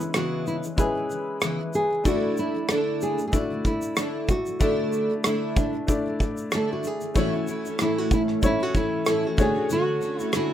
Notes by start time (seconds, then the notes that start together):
Already playing: G#3 C#4 D4 E4 B4 C#5
0.00 C#3 E3, shaker
0.14 C#3 E3 G#3 B3 E4 F#4, cross-stick, shaker
0.47 E4, shaker
0.63 C#3 E3, shaker
0.76 G#3 C#4 E4 G#4 B4, kick, shaker
0.95 C#3 E3
1.09 C#3 E3, shaker
1.41 C#3 E3 G#3 B3 E4, cross-stick, shaker
1.59 C#3 E3
1.73 C#3 E3 G#4, shaker
1.90 C#3 E3
2.04 D3 A3 D4 E4 F#4 D5, kick, shaker
2.37 E4, shaker
2.55 D3 A3
2.69 D3 A3 D4 E4, cross-stick, shaker
3.01 G#4, shaker
3.18 D3 A3, shaker
3.27 A3 G#4
3.32 D4 E4 F#4 D5, kick, shaker
3.50 D3 A3
3.65 D3 A3 E4, kick, shaker
3.82 shaker
3.96 D3 A3 D4 E4, cross-stick, shaker
4.28 D3 A3 F#4, kick, shaker
4.46 D3 A3, shaker
4.60 D3 A3 D4 E4 D5, kick, shaker
4.93 shaker
5.10 D3 A3
5.24 D3 A3 D4 E4, cross-stick, shaker
5.56 D4, kick, shaker
5.75 A3
5.87 A3 D4 E4 D5, kick, shaker
6.06 D3 A3
6.19 D3 A3, kick, shaker
6.37 shaker
6.51 D3 A3 D4 E4 A4, cross-stick, shaker
6.73 F#4
6.83 D3 A3, shaker
6.87 G#4
7.01 D3 A3, shaker
7.14 A2 E3 A3 C#4 E4 F#4 C#5, kick, shaker
7.33 A3 C#4 E4
7.47 E3 A3 C#4 E4, shaker
7.65 A3 C#4 E4, shaker
7.79 A2 E3 A3 C#4 E4, cross-stick, shaker
7.98 F#4
8.11 E4, kick, shaker
8.28 cross-stick
8.42 A3 C#4 E4 C#5, kick, shaker
8.60 A3 C#4 E4 F#4
8.74 E3 A3 C#4 E4, kick, shaker
9.06 A2 E3 A3 C#4 E4 A4, cross-stick, shaker
9.23 A3 C#4 E4 F#4
9.37 D3 A3 C#4 D4 F#4 C#5, kick, shaker
9.41 G#4
9.54 A3 C#4 F#4
9.69 D3 A3 C#4 F#4, shaker
10.01 D3 A3 C#4 F#4, shaker
10.18 A3 C#4 E4 F#4, shaker
10.33 D3 A3 C#4 E4 F#4, cross-stick, shaker